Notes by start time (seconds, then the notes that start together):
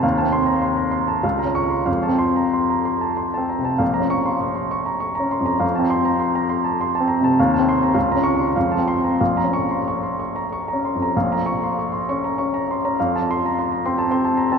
0.03 D#2 F5
0.18 C4 A5
0.32 C6
0.46 A#5
0.62 C6
0.77 A#5
0.91 C6
1.08 A5
1.23 C#2 F5
1.39 A#5
1.45 C#4
1.55 C#6
1.70 C6
1.86 F2 F5
2.03 A5
2.09 C4
2.19 C6
2.36 A#5
2.53 C6
2.70 A#5
2.85 C6
3.01 A5
3.17 C6
3.34 C4 A5
3.49 A#5
3.59 C3
3.65 A5
3.78 A#1 F5
3.94 A#5
4.00 C#4
4.10 C#6
4.26 C6
4.41 C#6
4.55 C6
4.71 C#6
4.86 A#5
5.00 C#6
5.15 A#5
5.20 C#4
5.31 C6
5.41 F2
5.46 A#5
5.60 F2 F5
5.75 C4 A5
5.90 C6
6.05 A#5
6.20 C6
6.35 A#5
6.49 C6
6.64 A5
6.81 C6
6.95 A5
7.00 C4
7.08 A#5
7.21 C3 A5
7.39 D#2 F5
7.54 A5
7.59 C4
7.69 C6
7.83 A#5
7.94 C#2 F5
8.12 C#4 A#5
8.23 C#6
8.39 C6
8.56 F2 F5
8.71 A5
8.78 C4
8.88 C6
9.04 A#5
9.21 A#1 F5
9.37 A#5
9.44 C#4
9.53 C#6
9.71 C6
9.88 C#6
10.03 C6
10.20 C#6
10.36 A#5
10.53 C#6
10.68 A#5
10.73 C#4
10.85 C6
10.95 F2
11.02 A#5
11.16 A#1 F5
11.32 A#5
11.46 C#6
11.63 C6
11.79 C#6
11.92 C6
12.09 C#4 C#6
12.24 A#5
12.38 C#4 C#6
12.54 A#5
12.71 C6
12.85 C#4 A#5
13.00 F2 F5
13.16 A5
13.31 C6
13.46 A#5
13.59 C6
13.72 A#5
13.86 C4 C6
13.98 A5
14.11 C4 C6
14.25 A5
14.37 A#5
14.52 C4 A5